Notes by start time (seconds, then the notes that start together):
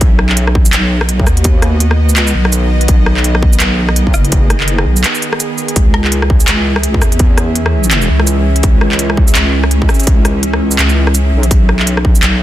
0.01 B1 D#3 B3 F#4 D#5, kick, closed hi-hat
0.19 cross-stick
0.29 clap
0.37 closed hi-hat
0.47 cross-stick
0.55 kick
0.66 shaker
0.73 B1, clap, closed hi-hat
1.01 cross-stick
1.09 closed hi-hat
1.20 kick
1.27 D#2, cross-stick, shaker
1.37 closed hi-hat
1.44 kick, closed hi-hat
1.62 cross-stick, closed hi-hat
1.80 closed hi-hat
1.91 cross-stick
2.02 D2
2.09 shaker
2.16 clap, closed hi-hat
2.23 C#2
2.27 shaker
2.35 B1
2.45 cross-stick
2.53 closed hi-hat, shaker
2.81 closed hi-hat
2.88 B1 G#4, kick, closed hi-hat
3.06 cross-stick
3.17 clap
3.24 closed hi-hat
3.35 cross-stick
3.43 kick
3.53 shaker
3.60 B1, clap, closed hi-hat
3.89 cross-stick
3.96 closed hi-hat
4.07 kick
4.14 F#1, cross-stick, shaker
4.25 closed hi-hat
4.32 kick, closed hi-hat
4.50 cross-stick, closed hi-hat
4.60 clap
4.68 closed hi-hat
4.78 cross-stick
4.86 B1
4.97 shaker
5.04 clap, closed hi-hat
5.15 shaker
5.22 closed hi-hat
5.33 cross-stick
5.40 closed hi-hat, shaker
5.58 shaker
5.68 closed hi-hat
5.76 C#2 E3 C#4 E5, kick, closed hi-hat
5.94 cross-stick
6.04 clap
6.12 closed hi-hat
6.22 cross-stick
6.30 kick
6.40 shaker
6.48 C#2, clap, closed hi-hat
6.76 cross-stick
6.83 closed hi-hat
6.94 kick
7.02 E2, cross-stick, shaker
7.12 closed hi-hat
7.19 kick, closed hi-hat
7.38 cross-stick, closed hi-hat
7.55 closed hi-hat
7.66 cross-stick
7.84 shaker
7.91 clap, closed hi-hat
8.02 shaker
8.10 C#2
8.20 cross-stick
8.27 closed hi-hat, shaker
8.56 closed hi-hat
8.63 C#2, kick, closed hi-hat
8.81 cross-stick
8.92 clap
8.99 closed hi-hat
9.10 cross-stick
9.17 kick
9.28 shaker
9.35 C#2, clap, closed hi-hat
9.64 cross-stick
9.71 closed hi-hat
9.82 kick
9.89 cross-stick, shaker
9.94 shaker
10.00 closed hi-hat, shaker
10.03 closed hi-hat, shaker
10.07 C#2, kick
10.25 cross-stick, closed hi-hat
10.43 closed hi-hat
10.53 cross-stick
10.71 shaker
10.79 C#2, clap, closed hi-hat
10.89 shaker
11.07 cross-stick
11.15 closed hi-hat, shaker
11.33 B1
11.43 closed hi-hat
11.51 B1 D#3 B3 F#4 D#5, kick, closed hi-hat
11.69 cross-stick
11.79 clap
11.87 closed hi-hat
11.97 cross-stick
12.05 kick
12.15 shaker
12.22 B1, clap, closed hi-hat